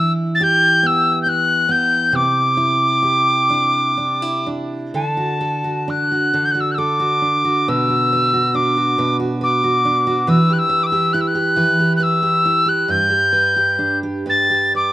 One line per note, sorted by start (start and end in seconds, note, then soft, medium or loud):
0.00 2.12 E3 medium
0.00 1.26 E4 medium
0.00 0.12 E6 medium
0.35 0.44 A6 medium
0.41 3.02 G4 medium
0.41 0.88 G6 medium
0.83 1.68 B3 medium
0.83 1.21 E6 medium
1.22 1.30 G6 medium
1.26 2.57 E4 medium
1.26 1.73 F#6 medium
1.69 2.22 B3 medium
1.69 2.17 G6 medium
2.12 4.94 C3 medium
2.12 4.48 D6 medium
2.57 3.97 E4 medium
3.03 4.94 G4 medium
3.50 3.97 D4 soft
3.97 4.22 D4 medium
4.22 5.04 E4 soft
4.47 5.87 D4 soft
4.94 6.33 D3 medium
4.94 5.39 A4 medium
4.94 5.91 A5 medium
5.17 5.64 F#4 soft
5.41 6.33 A4 medium
5.64 6.11 F#4 soft
5.88 7.21 D4 medium
5.88 6.46 F#6 medium
6.12 6.54 F#4 soft
6.34 9.84 D3 medium
6.34 6.77 A4 soft
6.45 6.52 G6 medium
6.51 6.62 F#6 medium
6.55 6.99 F#4 soft
6.60 6.73 E6 medium
6.71 6.79 E6 medium
6.71 6.74 F#6 medium
6.78 7.67 A4 medium
6.78 7.70 D6 medium
7.00 7.44 F#4 medium
7.22 8.54 D4 soft
7.45 7.89 F#4 medium
7.68 8.97 B2 medium
7.68 8.12 B4 medium
7.68 8.57 E6 medium
7.89 8.32 F#4 soft
8.13 8.98 B4 medium
8.33 8.76 F#4 medium
8.54 9.84 D4 medium
8.54 9.17 D6 medium
8.77 9.18 F#4 medium
8.98 10.37 B2 medium
8.98 9.41 B4 medium
9.20 9.62 F#4 medium
9.41 10.28 B4 medium
9.41 10.31 D6 medium
9.63 10.06 F#4 medium
9.85 10.37 D4 medium
10.07 10.37 F#4 medium
10.27 11.55 E3 medium
10.27 10.69 B4 medium
10.27 10.54 E6 medium
10.50 10.92 G4 medium
10.50 10.60 F#6 medium
10.58 10.84 E6 medium
10.69 11.57 B4 medium
10.83 10.88 D6 medium
10.83 11.14 E6 medium
10.92 11.34 G4 medium
11.13 12.44 E4 medium
11.13 11.22 F#6 medium
11.21 11.29 E6 medium
11.27 11.95 F#6 medium
11.35 11.79 G4 medium
11.56 12.97 E3 medium
11.56 12.00 B4 medium
11.80 12.22 G4 soft
11.96 12.04 F#6 medium
12.00 12.89 B4 medium
12.00 12.70 E6 medium
12.23 12.65 G4 soft
12.45 12.98 E4 medium
12.66 13.10 G4 soft
12.66 12.92 F#6 medium
12.88 14.25 G2 medium
12.88 13.31 B4 medium
12.88 13.99 G6 medium
13.10 13.55 G4 soft
13.33 14.26 B4 medium
13.56 14.02 G4 soft
13.79 14.93 D4 soft
14.03 14.49 G4 soft
14.26 14.93 G2 medium
14.26 14.74 B4 soft
14.26 14.73 A6 medium
14.50 14.93 G4 soft
14.75 14.93 B4 soft
14.75 14.93 D6 medium